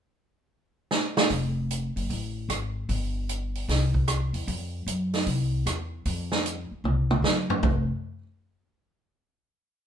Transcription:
0, 0, Header, 1, 4, 480
1, 0, Start_track
1, 0, Tempo, 396040
1, 1585, Time_signature, 4, 2, 24, 8
1, 11952, End_track
2, 0, Start_track
2, 0, Title_t, "Upright bass"
2, 0, Program_c, 0, 32
2, 1579, Note_on_c, 0, 29, 84
2, 2329, Note_off_c, 0, 29, 0
2, 2376, Note_on_c, 0, 30, 70
2, 2532, Note_off_c, 0, 30, 0
2, 2547, Note_on_c, 0, 33, 73
2, 2993, Note_off_c, 0, 33, 0
2, 3013, Note_on_c, 0, 32, 72
2, 3465, Note_off_c, 0, 32, 0
2, 3500, Note_on_c, 0, 31, 86
2, 4414, Note_off_c, 0, 31, 0
2, 4464, Note_on_c, 0, 36, 81
2, 5210, Note_off_c, 0, 36, 0
2, 5250, Note_on_c, 0, 40, 65
2, 5408, Note_off_c, 0, 40, 0
2, 5424, Note_on_c, 0, 41, 91
2, 5870, Note_off_c, 0, 41, 0
2, 5896, Note_on_c, 0, 42, 77
2, 6345, Note_off_c, 0, 42, 0
2, 6383, Note_on_c, 0, 36, 83
2, 6828, Note_off_c, 0, 36, 0
2, 6857, Note_on_c, 0, 40, 70
2, 7305, Note_off_c, 0, 40, 0
2, 7341, Note_on_c, 0, 41, 88
2, 8086, Note_off_c, 0, 41, 0
2, 8289, Note_on_c, 0, 36, 79
2, 8739, Note_off_c, 0, 36, 0
2, 8754, Note_on_c, 0, 42, 73
2, 9211, Note_off_c, 0, 42, 0
2, 9247, Note_on_c, 0, 29, 93
2, 9545, Note_off_c, 0, 29, 0
2, 11952, End_track
3, 0, Start_track
3, 0, Title_t, "Muted upright bass strokes"
3, 8134, Note_on_c, 9, 29, 40
3, 8255, Note_off_c, 9, 29, 0
3, 11952, End_track
4, 0, Start_track
4, 0, Title_t, "Drums"
4, 1102, Note_on_c, 9, 38, 64
4, 1223, Note_off_c, 9, 38, 0
4, 1418, Note_on_c, 9, 38, 88
4, 1540, Note_off_c, 9, 38, 0
4, 1578, Note_on_c, 9, 46, 46
4, 1580, Note_on_c, 9, 36, 32
4, 1699, Note_off_c, 9, 46, 0
4, 1701, Note_off_c, 9, 36, 0
4, 2068, Note_on_c, 9, 42, 55
4, 2189, Note_off_c, 9, 42, 0
4, 2384, Note_on_c, 9, 46, 38
4, 2505, Note_off_c, 9, 46, 0
4, 2545, Note_on_c, 9, 36, 33
4, 2548, Note_on_c, 9, 46, 45
4, 2666, Note_off_c, 9, 36, 0
4, 2669, Note_off_c, 9, 46, 0
4, 3026, Note_on_c, 9, 42, 57
4, 3027, Note_on_c, 9, 37, 64
4, 3147, Note_off_c, 9, 42, 0
4, 3148, Note_off_c, 9, 37, 0
4, 3502, Note_on_c, 9, 36, 33
4, 3504, Note_on_c, 9, 46, 45
4, 3624, Note_off_c, 9, 36, 0
4, 3625, Note_off_c, 9, 46, 0
4, 3989, Note_on_c, 9, 42, 54
4, 4110, Note_off_c, 9, 42, 0
4, 4307, Note_on_c, 9, 46, 37
4, 4428, Note_off_c, 9, 46, 0
4, 4467, Note_on_c, 9, 36, 32
4, 4475, Note_on_c, 9, 46, 48
4, 4476, Note_on_c, 9, 38, 38
4, 4589, Note_off_c, 9, 36, 0
4, 4596, Note_off_c, 9, 46, 0
4, 4597, Note_off_c, 9, 38, 0
4, 4779, Note_on_c, 9, 36, 52
4, 4900, Note_off_c, 9, 36, 0
4, 4941, Note_on_c, 9, 42, 56
4, 4942, Note_on_c, 9, 37, 64
4, 5062, Note_off_c, 9, 42, 0
4, 5063, Note_off_c, 9, 37, 0
4, 5259, Note_on_c, 9, 46, 38
4, 5380, Note_off_c, 9, 46, 0
4, 5425, Note_on_c, 9, 36, 32
4, 5428, Note_on_c, 9, 46, 46
4, 5546, Note_off_c, 9, 36, 0
4, 5549, Note_off_c, 9, 46, 0
4, 5908, Note_on_c, 9, 42, 56
4, 6029, Note_off_c, 9, 42, 0
4, 6224, Note_on_c, 9, 46, 40
4, 6225, Note_on_c, 9, 38, 40
4, 6345, Note_off_c, 9, 46, 0
4, 6347, Note_off_c, 9, 38, 0
4, 6382, Note_on_c, 9, 46, 47
4, 6384, Note_on_c, 9, 36, 34
4, 6503, Note_off_c, 9, 46, 0
4, 6505, Note_off_c, 9, 36, 0
4, 6866, Note_on_c, 9, 42, 56
4, 6868, Note_on_c, 9, 37, 65
4, 6988, Note_off_c, 9, 42, 0
4, 6989, Note_off_c, 9, 37, 0
4, 7339, Note_on_c, 9, 46, 47
4, 7341, Note_on_c, 9, 36, 34
4, 7460, Note_off_c, 9, 46, 0
4, 7462, Note_off_c, 9, 36, 0
4, 7655, Note_on_c, 9, 38, 61
4, 7777, Note_off_c, 9, 38, 0
4, 7826, Note_on_c, 9, 42, 58
4, 7947, Note_off_c, 9, 42, 0
4, 8303, Note_on_c, 9, 47, 44
4, 8424, Note_off_c, 9, 47, 0
4, 8613, Note_on_c, 9, 47, 64
4, 8734, Note_off_c, 9, 47, 0
4, 8775, Note_on_c, 9, 38, 65
4, 8897, Note_off_c, 9, 38, 0
4, 9089, Note_on_c, 9, 43, 86
4, 9210, Note_off_c, 9, 43, 0
4, 9245, Note_on_c, 9, 43, 88
4, 9251, Note_on_c, 9, 36, 90
4, 9367, Note_off_c, 9, 43, 0
4, 9372, Note_off_c, 9, 36, 0
4, 11952, End_track
0, 0, End_of_file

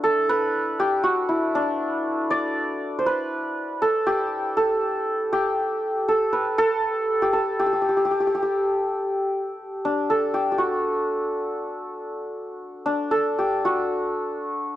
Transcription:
0, 0, Header, 1, 2, 480
1, 0, Start_track
1, 0, Tempo, 503356
1, 25, Time_signature, 6, 3, 24, 8
1, 14077, End_track
2, 0, Start_track
2, 0, Title_t, "Santur"
2, 0, Program_c, 0, 15
2, 0, Note_on_c, 0, 62, 62
2, 0, Note_on_c, 0, 64, 63
2, 0, Note_on_c, 0, 66, 80
2, 34, Note_on_c, 0, 69, 91
2, 280, Note_on_c, 0, 71, 86
2, 759, Note_on_c, 0, 67, 88
2, 816, Note_off_c, 0, 66, 0
2, 987, Note_on_c, 0, 66, 78
2, 1044, Note_off_c, 0, 67, 0
2, 1224, Note_off_c, 0, 64, 0
2, 1228, Note_on_c, 0, 64, 69
2, 1474, Note_off_c, 0, 62, 0
2, 1478, Note_on_c, 0, 62, 86
2, 2197, Note_on_c, 0, 74, 94
2, 2823, Note_off_c, 0, 69, 0
2, 2848, Note_on_c, 0, 72, 64
2, 2905, Note_off_c, 0, 71, 0
2, 2921, Note_on_c, 0, 71, 82
2, 2978, Note_off_c, 0, 72, 0
2, 3641, Note_on_c, 0, 69, 90
2, 3877, Note_on_c, 0, 67, 83
2, 3935, Note_off_c, 0, 66, 0
2, 4353, Note_off_c, 0, 69, 0
2, 4357, Note_on_c, 0, 69, 87
2, 4544, Note_off_c, 0, 74, 0
2, 4548, Note_off_c, 0, 64, 0
2, 5035, Note_off_c, 0, 62, 0
2, 5075, Note_off_c, 0, 67, 0
2, 5079, Note_on_c, 0, 67, 87
2, 5531, Note_off_c, 0, 71, 0
2, 5798, Note_off_c, 0, 69, 0
2, 5802, Note_on_c, 0, 69, 83
2, 6033, Note_on_c, 0, 71, 75
2, 6273, Note_off_c, 0, 69, 0
2, 6277, Note_on_c, 0, 69, 101
2, 6882, Note_off_c, 0, 67, 0
2, 6885, Note_on_c, 0, 67, 72
2, 6987, Note_off_c, 0, 69, 0
2, 6991, Note_on_c, 0, 69, 75
2, 7239, Note_off_c, 0, 67, 0
2, 7242, Note_on_c, 0, 67, 73
2, 7304, Note_off_c, 0, 67, 0
2, 7308, Note_on_c, 0, 67, 51
2, 7366, Note_off_c, 0, 67, 0
2, 7370, Note_on_c, 0, 67, 51
2, 7450, Note_off_c, 0, 67, 0
2, 7454, Note_on_c, 0, 67, 44
2, 7519, Note_off_c, 0, 67, 0
2, 7522, Note_on_c, 0, 67, 51
2, 7594, Note_off_c, 0, 67, 0
2, 7598, Note_on_c, 0, 67, 53
2, 7673, Note_off_c, 0, 67, 0
2, 7677, Note_on_c, 0, 67, 56
2, 7730, Note_off_c, 0, 67, 0
2, 7734, Note_on_c, 0, 67, 46
2, 7817, Note_off_c, 0, 67, 0
2, 7821, Note_on_c, 0, 67, 56
2, 7882, Note_off_c, 0, 67, 0
2, 7886, Note_on_c, 0, 67, 50
2, 7955, Note_off_c, 0, 67, 0
2, 7959, Note_on_c, 0, 67, 59
2, 8030, Note_off_c, 0, 67, 0
2, 8034, Note_on_c, 0, 67, 51
2, 8643, Note_off_c, 0, 71, 0
2, 9392, Note_on_c, 0, 62, 74
2, 9626, Note_off_c, 0, 69, 0
2, 9630, Note_on_c, 0, 69, 81
2, 9856, Note_off_c, 0, 67, 0
2, 9860, Note_on_c, 0, 67, 72
2, 10024, Note_off_c, 0, 67, 0
2, 10028, Note_on_c, 0, 67, 50
2, 10090, Note_on_c, 0, 66, 67
2, 10147, Note_off_c, 0, 67, 0
2, 12256, Note_off_c, 0, 62, 0
2, 12260, Note_on_c, 0, 62, 79
2, 12418, Note_off_c, 0, 69, 0
2, 12503, Note_on_c, 0, 69, 82
2, 12765, Note_on_c, 0, 67, 69
2, 12822, Note_off_c, 0, 66, 0
2, 13016, Note_on_c, 0, 66, 69
2, 13073, Note_off_c, 0, 67, 0
2, 14077, Note_off_c, 0, 62, 0
2, 14077, Note_off_c, 0, 66, 0
2, 14077, Note_off_c, 0, 69, 0
2, 14077, End_track
0, 0, End_of_file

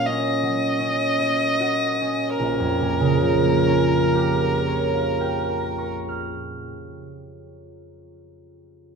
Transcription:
0, 0, Header, 1, 3, 480
1, 0, Start_track
1, 0, Key_signature, -5, "minor"
1, 0, Tempo, 1463415
1, 255, Tempo, 1617251
1, 735, Time_signature, 6, 3, 24, 8
1, 735, Tempo, 1449275
1, 2907, End_track
2, 0, Start_track
2, 0, Title_t, "Violin"
2, 0, Program_c, 0, 40
2, 18, Note_on_c, 0, 75, 50
2, 728, Note_off_c, 0, 75, 0
2, 729, Note_on_c, 0, 70, 41
2, 1904, Note_off_c, 0, 70, 0
2, 2907, End_track
3, 0, Start_track
3, 0, Title_t, "Harp"
3, 0, Program_c, 1, 46
3, 0, Note_on_c, 1, 46, 43
3, 0, Note_on_c, 1, 54, 26
3, 0, Note_on_c, 1, 58, 27
3, 0, Note_on_c, 1, 66, 28
3, 24, Note_on_c, 1, 61, 29
3, 136, Note_off_c, 1, 54, 0
3, 140, Note_on_c, 1, 54, 25
3, 259, Note_off_c, 1, 61, 0
3, 263, Note_on_c, 1, 61, 26
3, 373, Note_off_c, 1, 58, 0
3, 377, Note_on_c, 1, 58, 23
3, 497, Note_off_c, 1, 66, 0
3, 500, Note_on_c, 1, 66, 23
3, 617, Note_off_c, 1, 61, 0
3, 621, Note_on_c, 1, 61, 23
3, 647, Note_off_c, 1, 46, 0
3, 735, Note_on_c, 1, 34, 32
3, 756, Note_off_c, 1, 66, 0
3, 759, Note_off_c, 1, 54, 0
3, 802, Note_on_c, 1, 41, 33
3, 870, Note_on_c, 1, 46, 31
3, 936, Note_on_c, 1, 49, 31
3, 1008, Note_on_c, 1, 53, 26
3, 1075, Note_off_c, 1, 58, 0
3, 1079, Note_on_c, 1, 58, 25
3, 1153, Note_off_c, 1, 61, 0
3, 1157, Note_on_c, 1, 61, 26
3, 1235, Note_on_c, 1, 65, 27
3, 1316, Note_on_c, 1, 67, 26
3, 1405, Note_on_c, 1, 70, 26
3, 1490, Note_on_c, 1, 73, 24
3, 1580, Note_on_c, 1, 77, 23
3, 1667, Note_on_c, 1, 79, 23
3, 1762, Note_on_c, 1, 82, 24
3, 1856, Note_on_c, 1, 85, 23
3, 1957, Note_on_c, 1, 89, 22
3, 2026, Note_off_c, 1, 34, 0
3, 2094, Note_off_c, 1, 41, 0
3, 2162, Note_off_c, 1, 46, 0
3, 2228, Note_off_c, 1, 49, 0
3, 2254, Note_off_c, 1, 58, 0
3, 2275, Note_off_c, 1, 53, 0
3, 2333, Note_off_c, 1, 61, 0
3, 2410, Note_off_c, 1, 65, 0
3, 2491, Note_off_c, 1, 67, 0
3, 2580, Note_off_c, 1, 70, 0
3, 2652, Note_off_c, 1, 85, 0
3, 2653, Note_off_c, 1, 79, 0
3, 2653, Note_off_c, 1, 82, 0
3, 2653, Note_off_c, 1, 89, 0
3, 2655, Note_off_c, 1, 73, 0
3, 2655, Note_off_c, 1, 77, 0
3, 2907, End_track
0, 0, End_of_file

